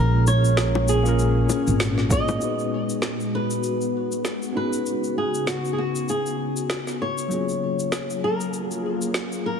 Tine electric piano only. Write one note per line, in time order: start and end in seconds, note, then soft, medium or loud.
0.00 1.00 A#3 medium
0.00 1.01 C#4 medium
0.00 1.01 F4 medium
0.00 1.02 G#4 medium
0.00 1.03 A#4 medium
1.03 2.07 A#3 medium
1.03 2.07 C#4 medium
1.03 2.08 F4 medium
1.07 2.09 G#4 medium
1.07 2.09 A#4 loud
2.09 2.37 A#3 medium
2.09 2.38 C#4 medium
2.09 2.38 F4 medium
2.09 2.38 G#4 medium
2.09 2.39 C#5 medium
2.38 4.51 B3 medium
2.38 4.52 D#4 medium
2.38 4.52 F#4 medium
2.43 4.53 G#4 medium
2.43 4.54 B4 medium
4.53 7.26 B3 medium
4.53 7.27 C#4 medium
4.53 7.28 D#4 medium
4.57 7.28 F#4 medium
4.57 7.29 G#4 medium
7.28 9.60 F#3 medium
7.28 9.60 A#3 medium
7.28 9.60 C#4 medium
7.32 9.60 F4 medium
7.32 9.60 G#4 medium